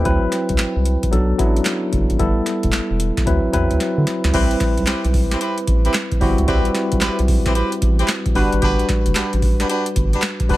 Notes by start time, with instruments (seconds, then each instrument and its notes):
Already playing: tine electric piano G5
0.04 analog synth bass D2, tine electric piano F#3 C4 E4 B4, kick, closed hi-hat
0.32 snare, closed hi-hat
0.49 analog synth bass C2, kick, closed hi-hat
0.58 analog synth bass C2, snare, clap, closed hi-hat
0.76 analog synth bass C2
0.85 closed hi-hat
1.03 kick, closed hi-hat
1.11 analog synth bass B1, tine electric piano F#3 B3 D4 A4, closed hi-hat
1.38 analog synth bass A1, tine electric piano F#3 B3 C#4 E4, kick, closed hi-hat
1.45 tine electric piano D4
1.57 closed hi-hat
1.65 snare, clap, closed hi-hat
1.93 analog synth bass F#1, kick, closed hi-hat
2.10 analog synth bass G#1, closed hi-hat
2.19 analog synth bass G1, tine electric piano G3 B3 E4 A4, kick, closed hi-hat
2.46 snare, closed hi-hat
2.63 analog synth bass E1, kick, closed hi-hat
2.72 analog synth bass E1, snare, clap, closed hi-hat
2.91 analog synth bass E1
3.00 closed hi-hat
3.17 kick, snare, closed hi-hat
3.26 analog synth bass D2, tine electric piano F#3 C4 E4 B4, kick, closed hi-hat
3.53 analog synth bass E2, tine electric piano F#3 C4 E4 B4, kick, closed hi-hat
3.71 analog synth bass D2, closed hi-hat
3.80 snare, closed hi-hat
3.98 analog synth bass D3
4.07 snare, closed hi-hat
4.24 analog synth bass C#2, snare, closed hi-hat
4.33 analog synth bass C2, tine electric piano G3 C4 E4 B4, horn section C4 E4 G4 B4, kick, closed hi-hat, crash
4.51 closed hi-hat
4.60 kick, snare, closed hi-hat
4.78 analog synth bass B1, closed hi-hat
4.87 analog synth bass B1, horn section C4 E4 G4 B4, snare, clap, closed hi-hat
5.05 analog synth bass B1, closed hi-hat
5.14 kick, open hi-hat
5.31 horn section C4 E4 G4 B4, snare, closed hi-hat
5.40 horn section C4 E4 G4 B4, closed hi-hat
5.58 closed hi-hat
5.67 analog synth bass A1, kick, closed hi-hat
5.85 horn section C4 E4 G4 B4, closed hi-hat
5.94 snare, clap, closed hi-hat
6.12 kick, closed hi-hat
6.21 analog synth bass G1, tine electric piano G3 C4 E4 F#4, horn section C4 E4 G4 B4, kick, open hi-hat
6.38 analog synth bass C#2, closed hi-hat
6.48 analog synth bass C2, tine electric piano G3 C4 E4 B4, horn section C4 E4 G4 B4, kick, closed hi-hat
6.65 closed hi-hat
6.75 snare, closed hi-hat
6.92 analog synth bass B1, kick, closed hi-hat
7.01 analog synth bass B1, horn section C4 E4 G4 B4, snare, clap, closed hi-hat
7.19 analog synth bass B1, closed hi-hat
7.28 kick, open hi-hat
7.45 horn section C4 E4 G4 B4, kick, snare, closed hi-hat
7.55 horn section C4 E4 G4 B4, closed hi-hat
7.72 closed hi-hat
7.82 analog synth bass A1, kick, closed hi-hat
7.99 horn section C4 E4 G4 B4, closed hi-hat
8.08 snare, clap, closed hi-hat
8.26 kick, closed hi-hat
8.35 analog synth bass G1, tine electric piano G3 D4 F#4 B4, horn section D4 F#4 G4 B4, open hi-hat
8.52 analog synth bass G#1, closed hi-hat
8.62 analog synth bass G1, horn section D4 F#4 G4 B4, kick, closed hi-hat
8.79 closed hi-hat
8.89 kick, snare, closed hi-hat
9.06 analog synth bass F#1, closed hi-hat
9.15 analog synth bass A1, horn section D4 F#4 G4 B4, snare, clap, closed hi-hat
9.33 analog synth bass A1, closed hi-hat
9.42 kick, open hi-hat
9.60 horn section D4 F#4 G4 B4, snare, closed hi-hat
9.69 horn section D4 F#4 G4 B4, closed hi-hat
9.86 closed hi-hat
9.96 analog synth bass G1, kick, closed hi-hat
10.13 horn section D4 F#4 G4 B4, closed hi-hat
10.22 snare, clap, closed hi-hat
10.40 kick, closed hi-hat
10.49 analog synth bass F#1, tine electric piano G3 D4 F#4 B4, horn section D4 F#4 G4 B4, kick, open hi-hat